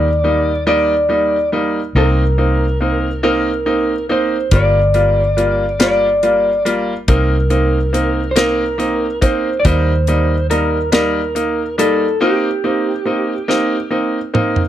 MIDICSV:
0, 0, Header, 1, 5, 480
1, 0, Start_track
1, 0, Tempo, 854701
1, 1096, Time_signature, 6, 3, 24, 8
1, 8247, End_track
2, 0, Start_track
2, 0, Title_t, "Electric slide guitar"
2, 0, Program_c, 0, 29
2, 0, Note_on_c, 0, 74, 87
2, 357, Note_off_c, 0, 74, 0
2, 384, Note_on_c, 0, 74, 68
2, 838, Note_off_c, 0, 74, 0
2, 1109, Note_on_c, 0, 70, 66
2, 1801, Note_off_c, 0, 70, 0
2, 1825, Note_on_c, 0, 70, 59
2, 2279, Note_off_c, 0, 70, 0
2, 2312, Note_on_c, 0, 72, 67
2, 2549, Note_on_c, 0, 74, 78
2, 2552, Note_off_c, 0, 72, 0
2, 3265, Note_off_c, 0, 74, 0
2, 3272, Note_on_c, 0, 74, 67
2, 3723, Note_off_c, 0, 74, 0
2, 3985, Note_on_c, 0, 70, 71
2, 4668, Note_on_c, 0, 72, 56
2, 4683, Note_off_c, 0, 70, 0
2, 4703, Note_off_c, 0, 72, 0
2, 4703, Note_on_c, 0, 70, 76
2, 5159, Note_off_c, 0, 70, 0
2, 5185, Note_on_c, 0, 72, 71
2, 5389, Note_off_c, 0, 72, 0
2, 5389, Note_on_c, 0, 74, 64
2, 5424, Note_off_c, 0, 74, 0
2, 5424, Note_on_c, 0, 72, 91
2, 5898, Note_off_c, 0, 72, 0
2, 5900, Note_on_c, 0, 70, 73
2, 6137, Note_off_c, 0, 70, 0
2, 6143, Note_on_c, 0, 70, 77
2, 6621, Note_off_c, 0, 70, 0
2, 6624, Note_on_c, 0, 69, 65
2, 6845, Note_off_c, 0, 69, 0
2, 6865, Note_on_c, 0, 67, 65
2, 7799, Note_off_c, 0, 67, 0
2, 8247, End_track
3, 0, Start_track
3, 0, Title_t, "Grand piano"
3, 0, Program_c, 1, 0
3, 134, Note_on_c, 1, 55, 53
3, 136, Note_on_c, 1, 58, 46
3, 137, Note_on_c, 1, 63, 60
3, 281, Note_off_c, 1, 55, 0
3, 283, Note_off_c, 1, 58, 0
3, 283, Note_off_c, 1, 63, 0
3, 373, Note_on_c, 1, 55, 69
3, 375, Note_on_c, 1, 58, 62
3, 375, Note_on_c, 1, 63, 77
3, 521, Note_off_c, 1, 55, 0
3, 522, Note_off_c, 1, 58, 0
3, 522, Note_off_c, 1, 63, 0
3, 611, Note_on_c, 1, 55, 53
3, 616, Note_on_c, 1, 58, 46
3, 616, Note_on_c, 1, 63, 58
3, 760, Note_off_c, 1, 55, 0
3, 763, Note_off_c, 1, 58, 0
3, 763, Note_off_c, 1, 63, 0
3, 855, Note_on_c, 1, 55, 54
3, 859, Note_on_c, 1, 58, 54
3, 859, Note_on_c, 1, 63, 63
3, 1003, Note_off_c, 1, 55, 0
3, 1004, Note_off_c, 1, 58, 0
3, 1005, Note_off_c, 1, 63, 0
3, 1099, Note_on_c, 1, 58, 67
3, 1099, Note_on_c, 1, 60, 64
3, 1101, Note_on_c, 1, 63, 73
3, 1244, Note_off_c, 1, 58, 0
3, 1245, Note_off_c, 1, 60, 0
3, 1245, Note_off_c, 1, 63, 0
3, 1337, Note_on_c, 1, 58, 53
3, 1337, Note_on_c, 1, 60, 47
3, 1338, Note_on_c, 1, 63, 54
3, 1483, Note_off_c, 1, 58, 0
3, 1483, Note_off_c, 1, 60, 0
3, 1484, Note_off_c, 1, 63, 0
3, 1575, Note_on_c, 1, 58, 51
3, 1576, Note_on_c, 1, 60, 43
3, 1581, Note_on_c, 1, 63, 54
3, 1723, Note_off_c, 1, 58, 0
3, 1723, Note_off_c, 1, 60, 0
3, 1726, Note_off_c, 1, 63, 0
3, 1815, Note_on_c, 1, 58, 71
3, 1816, Note_on_c, 1, 60, 62
3, 1817, Note_on_c, 1, 63, 78
3, 1963, Note_off_c, 1, 58, 0
3, 1963, Note_off_c, 1, 60, 0
3, 1964, Note_off_c, 1, 63, 0
3, 2055, Note_on_c, 1, 58, 52
3, 2056, Note_on_c, 1, 63, 62
3, 2058, Note_on_c, 1, 60, 47
3, 2203, Note_off_c, 1, 58, 0
3, 2204, Note_off_c, 1, 60, 0
3, 2204, Note_off_c, 1, 63, 0
3, 2299, Note_on_c, 1, 58, 57
3, 2299, Note_on_c, 1, 60, 53
3, 2300, Note_on_c, 1, 63, 65
3, 2445, Note_off_c, 1, 58, 0
3, 2445, Note_off_c, 1, 60, 0
3, 2446, Note_off_c, 1, 63, 0
3, 2536, Note_on_c, 1, 55, 68
3, 2538, Note_on_c, 1, 58, 63
3, 2540, Note_on_c, 1, 65, 68
3, 2683, Note_off_c, 1, 55, 0
3, 2685, Note_off_c, 1, 58, 0
3, 2686, Note_off_c, 1, 65, 0
3, 2775, Note_on_c, 1, 55, 52
3, 2777, Note_on_c, 1, 58, 46
3, 2778, Note_on_c, 1, 65, 56
3, 2923, Note_off_c, 1, 55, 0
3, 2924, Note_off_c, 1, 58, 0
3, 2925, Note_off_c, 1, 65, 0
3, 3015, Note_on_c, 1, 55, 50
3, 3016, Note_on_c, 1, 58, 47
3, 3020, Note_on_c, 1, 65, 55
3, 3163, Note_off_c, 1, 55, 0
3, 3164, Note_off_c, 1, 58, 0
3, 3166, Note_off_c, 1, 65, 0
3, 3254, Note_on_c, 1, 55, 73
3, 3256, Note_on_c, 1, 58, 61
3, 3258, Note_on_c, 1, 65, 78
3, 3403, Note_off_c, 1, 55, 0
3, 3404, Note_off_c, 1, 58, 0
3, 3405, Note_off_c, 1, 65, 0
3, 3499, Note_on_c, 1, 55, 52
3, 3500, Note_on_c, 1, 58, 51
3, 3500, Note_on_c, 1, 65, 55
3, 3645, Note_off_c, 1, 55, 0
3, 3646, Note_off_c, 1, 58, 0
3, 3646, Note_off_c, 1, 65, 0
3, 3735, Note_on_c, 1, 55, 62
3, 3737, Note_on_c, 1, 58, 58
3, 3739, Note_on_c, 1, 65, 66
3, 3884, Note_off_c, 1, 55, 0
3, 3885, Note_off_c, 1, 58, 0
3, 3885, Note_off_c, 1, 65, 0
3, 3978, Note_on_c, 1, 58, 68
3, 3978, Note_on_c, 1, 60, 66
3, 3981, Note_on_c, 1, 63, 72
3, 4125, Note_off_c, 1, 58, 0
3, 4125, Note_off_c, 1, 60, 0
3, 4127, Note_off_c, 1, 63, 0
3, 4213, Note_on_c, 1, 58, 53
3, 4213, Note_on_c, 1, 60, 46
3, 4214, Note_on_c, 1, 63, 61
3, 4363, Note_off_c, 1, 58, 0
3, 4363, Note_off_c, 1, 60, 0
3, 4363, Note_off_c, 1, 63, 0
3, 4452, Note_on_c, 1, 58, 51
3, 4454, Note_on_c, 1, 60, 50
3, 4458, Note_on_c, 1, 63, 59
3, 4602, Note_off_c, 1, 58, 0
3, 4603, Note_off_c, 1, 60, 0
3, 4605, Note_off_c, 1, 63, 0
3, 4693, Note_on_c, 1, 58, 76
3, 4697, Note_on_c, 1, 60, 65
3, 4698, Note_on_c, 1, 63, 77
3, 4843, Note_off_c, 1, 58, 0
3, 4845, Note_off_c, 1, 60, 0
3, 4846, Note_off_c, 1, 63, 0
3, 4931, Note_on_c, 1, 58, 56
3, 4935, Note_on_c, 1, 60, 51
3, 4935, Note_on_c, 1, 63, 63
3, 5082, Note_off_c, 1, 58, 0
3, 5084, Note_off_c, 1, 60, 0
3, 5084, Note_off_c, 1, 63, 0
3, 5174, Note_on_c, 1, 58, 62
3, 5176, Note_on_c, 1, 60, 57
3, 5178, Note_on_c, 1, 63, 66
3, 5324, Note_off_c, 1, 58, 0
3, 5324, Note_off_c, 1, 60, 0
3, 5325, Note_off_c, 1, 63, 0
3, 5418, Note_on_c, 1, 55, 71
3, 5420, Note_on_c, 1, 58, 65
3, 5423, Note_on_c, 1, 63, 81
3, 5566, Note_off_c, 1, 55, 0
3, 5566, Note_off_c, 1, 58, 0
3, 5568, Note_off_c, 1, 63, 0
3, 5660, Note_on_c, 1, 58, 53
3, 5661, Note_on_c, 1, 55, 54
3, 5663, Note_on_c, 1, 63, 64
3, 5807, Note_off_c, 1, 55, 0
3, 5807, Note_off_c, 1, 58, 0
3, 5808, Note_off_c, 1, 63, 0
3, 5896, Note_on_c, 1, 55, 52
3, 5898, Note_on_c, 1, 63, 60
3, 5899, Note_on_c, 1, 58, 48
3, 6045, Note_off_c, 1, 55, 0
3, 6046, Note_off_c, 1, 58, 0
3, 6046, Note_off_c, 1, 63, 0
3, 6133, Note_on_c, 1, 55, 77
3, 6135, Note_on_c, 1, 58, 68
3, 6138, Note_on_c, 1, 63, 81
3, 6283, Note_off_c, 1, 55, 0
3, 6284, Note_off_c, 1, 58, 0
3, 6285, Note_off_c, 1, 63, 0
3, 6374, Note_on_c, 1, 58, 53
3, 6379, Note_on_c, 1, 63, 58
3, 6523, Note_off_c, 1, 58, 0
3, 6526, Note_off_c, 1, 63, 0
3, 6615, Note_on_c, 1, 58, 58
3, 6616, Note_on_c, 1, 55, 65
3, 6618, Note_on_c, 1, 63, 73
3, 6764, Note_off_c, 1, 55, 0
3, 6764, Note_off_c, 1, 58, 0
3, 6765, Note_off_c, 1, 63, 0
3, 6855, Note_on_c, 1, 60, 66
3, 6856, Note_on_c, 1, 58, 73
3, 6858, Note_on_c, 1, 63, 75
3, 7004, Note_off_c, 1, 58, 0
3, 7004, Note_off_c, 1, 60, 0
3, 7005, Note_off_c, 1, 63, 0
3, 7098, Note_on_c, 1, 58, 55
3, 7099, Note_on_c, 1, 63, 57
3, 7101, Note_on_c, 1, 60, 50
3, 7245, Note_off_c, 1, 58, 0
3, 7246, Note_off_c, 1, 63, 0
3, 7247, Note_off_c, 1, 60, 0
3, 7332, Note_on_c, 1, 58, 52
3, 7332, Note_on_c, 1, 60, 45
3, 7337, Note_on_c, 1, 63, 59
3, 7482, Note_off_c, 1, 58, 0
3, 7482, Note_off_c, 1, 60, 0
3, 7484, Note_off_c, 1, 63, 0
3, 7571, Note_on_c, 1, 58, 69
3, 7574, Note_on_c, 1, 60, 67
3, 7578, Note_on_c, 1, 63, 76
3, 7721, Note_off_c, 1, 58, 0
3, 7723, Note_off_c, 1, 60, 0
3, 7725, Note_off_c, 1, 63, 0
3, 7809, Note_on_c, 1, 58, 54
3, 7810, Note_on_c, 1, 60, 50
3, 7813, Note_on_c, 1, 63, 59
3, 7960, Note_off_c, 1, 58, 0
3, 7960, Note_off_c, 1, 60, 0
3, 7962, Note_off_c, 1, 63, 0
3, 8051, Note_on_c, 1, 60, 51
3, 8052, Note_on_c, 1, 58, 56
3, 8053, Note_on_c, 1, 63, 62
3, 8201, Note_off_c, 1, 58, 0
3, 8201, Note_off_c, 1, 60, 0
3, 8202, Note_off_c, 1, 63, 0
3, 8247, End_track
4, 0, Start_track
4, 0, Title_t, "Fingered electric bass"
4, 0, Program_c, 2, 33
4, 0, Note_on_c, 2, 39, 83
4, 1075, Note_off_c, 2, 39, 0
4, 1095, Note_on_c, 2, 36, 81
4, 2514, Note_off_c, 2, 36, 0
4, 2537, Note_on_c, 2, 31, 80
4, 3956, Note_off_c, 2, 31, 0
4, 3980, Note_on_c, 2, 36, 83
4, 5398, Note_off_c, 2, 36, 0
4, 5419, Note_on_c, 2, 39, 73
4, 6837, Note_off_c, 2, 39, 0
4, 8247, End_track
5, 0, Start_track
5, 0, Title_t, "Drums"
5, 2535, Note_on_c, 9, 42, 57
5, 2536, Note_on_c, 9, 36, 87
5, 2591, Note_off_c, 9, 42, 0
5, 2593, Note_off_c, 9, 36, 0
5, 2775, Note_on_c, 9, 42, 40
5, 2831, Note_off_c, 9, 42, 0
5, 3020, Note_on_c, 9, 42, 42
5, 3077, Note_off_c, 9, 42, 0
5, 3256, Note_on_c, 9, 42, 61
5, 3261, Note_on_c, 9, 38, 85
5, 3313, Note_off_c, 9, 42, 0
5, 3317, Note_off_c, 9, 38, 0
5, 3498, Note_on_c, 9, 42, 42
5, 3554, Note_off_c, 9, 42, 0
5, 3741, Note_on_c, 9, 42, 44
5, 3797, Note_off_c, 9, 42, 0
5, 3976, Note_on_c, 9, 42, 53
5, 3978, Note_on_c, 9, 36, 84
5, 4032, Note_off_c, 9, 42, 0
5, 4034, Note_off_c, 9, 36, 0
5, 4214, Note_on_c, 9, 42, 43
5, 4270, Note_off_c, 9, 42, 0
5, 4461, Note_on_c, 9, 42, 39
5, 4517, Note_off_c, 9, 42, 0
5, 4697, Note_on_c, 9, 42, 63
5, 4701, Note_on_c, 9, 38, 84
5, 4753, Note_off_c, 9, 42, 0
5, 4758, Note_off_c, 9, 38, 0
5, 4940, Note_on_c, 9, 42, 43
5, 4996, Note_off_c, 9, 42, 0
5, 5178, Note_on_c, 9, 36, 69
5, 5179, Note_on_c, 9, 42, 43
5, 5234, Note_off_c, 9, 36, 0
5, 5235, Note_off_c, 9, 42, 0
5, 5418, Note_on_c, 9, 42, 58
5, 5419, Note_on_c, 9, 36, 86
5, 5474, Note_off_c, 9, 42, 0
5, 5475, Note_off_c, 9, 36, 0
5, 5657, Note_on_c, 9, 42, 44
5, 5713, Note_off_c, 9, 42, 0
5, 5902, Note_on_c, 9, 42, 43
5, 5958, Note_off_c, 9, 42, 0
5, 6135, Note_on_c, 9, 42, 59
5, 6140, Note_on_c, 9, 38, 86
5, 6191, Note_off_c, 9, 42, 0
5, 6196, Note_off_c, 9, 38, 0
5, 6380, Note_on_c, 9, 42, 47
5, 6436, Note_off_c, 9, 42, 0
5, 6622, Note_on_c, 9, 42, 48
5, 6678, Note_off_c, 9, 42, 0
5, 7582, Note_on_c, 9, 38, 42
5, 7638, Note_off_c, 9, 38, 0
5, 8058, Note_on_c, 9, 45, 73
5, 8114, Note_off_c, 9, 45, 0
5, 8178, Note_on_c, 9, 43, 66
5, 8234, Note_off_c, 9, 43, 0
5, 8247, End_track
0, 0, End_of_file